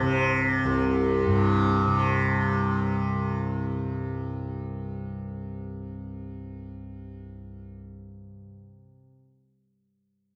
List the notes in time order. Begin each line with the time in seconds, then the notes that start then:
Already playing: C2 G2 C3 C4
0.02 C3
0.65 C2
1.27 G2
1.88 C3